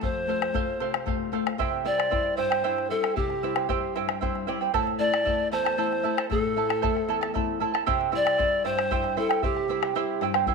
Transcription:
0.01 nylon-string guitar F2, charango A4 C5 F5, pan flute C5, bombo low
0.27 nylon-string guitar A3 C4 F4, charango A4 C5 F5
0.42 charango C5 F5, bombo rim
0.53 nylon-string guitar A3 C4 F4, charango A4 C5 F5, bombo low
0.80 nylon-string guitar C3, charango A4 C5 F5
0.94 charango C5 F5, bombo rim
1.06 nylon-string guitar A3 C4 F4, charango A4 C5 F5, bombo low
1.32 nylon-string guitar A3 C4 F4, charango A4 C5 F5, bombo rim
1.46 charango C5 F5, bombo rim
1.58 nylon-string guitar C3, charango E4 G4 C5 E5 G5, bombo low
1.84 nylon-string guitar G3 C4 E4, charango E4 C5 E5 G5, pan flute D5
1.98 charango E4 C5 G5, bombo rim
2.10 nylon-string guitar G3 C4 E4, charango E4 C5 E5 G5, bombo low
2.37 nylon-string guitar G2, charango E4 C5 E5 G5, pan flute C5, bombo rim
2.50 charango E4 C5 G5, bombo rim
2.64 nylon-string guitar G3 C4 E4, charango E4 G4 C5 E5 G5
2.78 bombo rim
2.90 nylon-string guitar G3 C4 E4, charango E4 C5 E5 G5, pan flute A4
3.03 charango E4 C5 G5, bombo rim
3.16 nylon-string guitar C3, charango E4 C5 E5 G5, pan flute G4, bombo low
3.30 bombo rim
3.43 nylon-string guitar G3 C4 E4, charango E4 C5 E5 G5
3.55 charango E4 C5 G5, bombo rim
3.69 nylon-string guitar G3 C4 E4, charango E4 G4 C5 E5 G5, bombo low
3.96 nylon-string guitar G2, charango E4 C5 E5 G5, bombo rim
4.08 charango E4 C5 G5, bombo rim
4.21 nylon-string guitar G3 C4 E4 E5, charango E4 C5 E5 G5, bombo low
4.36 bombo rim
4.47 nylon-string guitar G3 C4 E4 D5, charango E4 C5 E5 G5
4.61 charango E4 C5 G5
4.74 nylon-string guitar A2, charango E4 A4 C5 E5 A5, bombo low
4.87 bombo rim
4.99 nylon-string guitar A3 C4 E4, charango E4 A4 E5 A5, pan flute D5
5.13 charango E4 A4 A5, bombo rim
5.25 nylon-string guitar A3 C4 E4, charango E4 A4 E5 A5, bombo low
5.52 nylon-string guitar E2, charango E4 A4 E5 A5, pan flute C5, bombo rim
5.65 charango E4 A4 A5, bombo rim
5.78 nylon-string guitar A3 C4 E4, charango E4 A4 C5 E5 A5
5.92 bombo rim
6.03 nylon-string guitar A3 C4 E4, charango E4 A4 E5 A5
6.17 charango E4 A4 A5, bombo rim
6.30 nylon-string guitar A2, charango E4 A4 E5 A5, pan flute A4, bombo low
6.56 nylon-string guitar A3 C4 E4, charango E4 A4 E5 A5
6.69 charango E4 A4 A5, bombo rim
6.82 nylon-string guitar A3 C4 E4, charango E4 A4 C5 E5 A5, bombo rim, bombo low
6.97 bombo rim
7.08 nylon-string guitar E2, charango E4 A4 E5 A5
7.21 charango E4 A4 A5, bombo rim
7.34 nylon-string guitar A3 C4 E4, charango E4 A4 E5 A5, bombo low
7.60 nylon-string guitar A3 C4 E4, charango E4 A4 E5 A5
7.74 charango E4 A4 A5, bombo rim
7.86 nylon-string guitar C3, charango E4 G4 C5 E5 G5, bombo low
8.01 bombo rim
8.12 nylon-string guitar G3 C4 E4, charango E4 C5 E5 G5
8.16 pan flute D5
8.25 charango E4 C5 G5, bombo rim
8.38 nylon-string guitar G3 C4 E4, charango E4 C5 E5 G5, bombo low
8.64 nylon-string guitar G2, charango E4 C5 E5 G5, pan flute C5, bombo rim
8.77 charango E4 C5 G5, bombo rim
8.91 nylon-string guitar G3 C4 E4, charango E4 G4 C5 E5 G5, bombo low
9.04 bombo rim
9.17 nylon-string guitar G3 C4 E4, charango E4 C5 E5 G5, pan flute A4
9.29 charango E4 C5 G5, bombo rim
9.43 nylon-string guitar C3, charango E4 C5 E5 G5, pan flute G4, bombo low
9.57 bombo rim
9.68 nylon-string guitar G3 C4 E4, charango E4 C5 E5 G5
9.82 charango E4 C5 G5, bombo rim
9.95 nylon-string guitar G3 C4 E4, charango E4 G4 C5 E5 G5
10.21 nylon-string guitar G2, charango E4 C5 E5 G5, bombo rim
10.34 charango E4 C5 G5, bombo rim
10.46 nylon-string guitar G3 C4 E4, charango E4 C5 E5 G5, bombo low

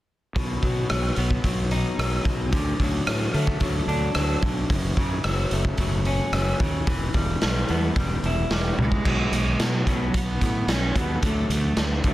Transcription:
0.35 fingered electric bass B1, clean electric guitar B2, kick, open hi-hat
0.62 fingered electric bass B2, clean electric guitar F#3, kick, open hi-hat
0.90 fingered electric bass B1, clean electric guitar F#3, cross-stick, open hi-hat
1.16 fingered electric bass B1, clean electric guitar B3, open hi-hat
1.31 kick
1.44 fingered electric bass B1, clean electric guitar F#3, kick, open hi-hat
1.71 clean electric guitar D#4, open hi-hat
1.99 fingered electric bass B1, clean electric guitar F#3, cross-stick, open hi-hat
2.25 fingered electric bass B1, clean electric guitar B2, kick, open hi-hat
2.52 fingered electric bass D2, clean electric guitar D3, kick, open hi-hat
2.79 fingered electric bass D2, clean electric guitar F#3, kick, open hi-hat
3.07 fingered electric bass A2, clean electric guitar F#3, cross-stick, open hi-hat
3.34 fingered electric bass D3, clean electric guitar A3, open hi-hat
3.47 kick
3.60 fingered electric bass D2, clean electric guitar F#3, kick, open hi-hat
3.87 fingered electric bass D2, clean electric guitar D4, open hi-hat
4.15 fingered electric bass D2, clean electric guitar F#3, cross-stick, open hi-hat
4.42 fingered electric bass B1, clean electric guitar D3, kick, open hi-hat
4.70 fingered electric bass F#1, clean electric guitar F#2, kick, open hi-hat
4.97 fingered electric bass F#2, clean electric guitar C#3, kick, open hi-hat
5.24 fingered electric bass F#1, clean electric guitar F#3, cross-stick, open hi-hat
5.51 fingered electric bass F#1, clean electric guitar A3, open hi-hat
5.65 kick
5.77 fingered electric bass F#1, clean electric guitar F#3, kick, open hi-hat
6.05 clean electric guitar C#4, open hi-hat
6.32 fingered electric bass F#1, clean electric guitar F#3, cross-stick, open hi-hat
6.60 fingered electric bass D#2, clean electric guitar C#3, kick, open hi-hat
6.87 fingered electric bass E1, clean electric guitar E3, kick, open hi-hat
7.14 fingered electric bass E1, clean electric guitar G3, kick, open hi-hat
7.42 fingered electric bass B1, clean electric guitar G3, snare, open hi-hat
7.68 fingered electric bass E2, clean electric guitar B3, open hi-hat
7.96 fingered electric bass E1, clean electric guitar G3, kick, open hi-hat
8.23 fingered electric bass E1, clean electric guitar E4, open hi-hat
8.50 fingered electric bass E1, clean electric guitar G3, snare, open hi-hat
8.78 fingered electric bass C#2, clean electric guitar E3, high tom
8.82 cello G#3
8.92 kick
9.05 fingered electric bass B1, clean electric guitar B2 F#3 B3, kick, crash
9.32 fingered electric bass B1, clean electric guitar B2 F#3, closed hi-hat
9.59 fingered electric bass B2, clean electric guitar B2 F#3, snare, closed hi-hat
9.65 cello F#3
9.87 fingered electric bass B1, clean electric guitar B2 F#3 B3, kick, closed hi-hat
10.14 fingered electric bass B1, clean electric guitar B2 F#3, cello B3, kick, closed hi-hat
10.41 fingered electric bass A2, clean electric guitar B2 F#3, kick, closed hi-hat
10.67 fingered electric bass B1, clean electric guitar B2, cello C#4, snare, closed hi-hat
10.72 clean electric guitar F#3
10.95 fingered electric bass D#2, clean electric guitar B2 F#3 B3, cello B3, kick, closed hi-hat
11.23 fingered electric bass D2, clean electric guitar D3 F#3 A3, cello A3, kick, closed hi-hat
11.49 fingered electric bass D2, clean electric guitar D3 F#3, cello A3, closed hi-hat
11.77 fingered electric bass D2, clean electric guitar D3 F#3, snare, closed hi-hat
12.04 fingered electric bass D2, clean electric guitar D3 F#3 A3, cello F#3, kick, closed hi-hat

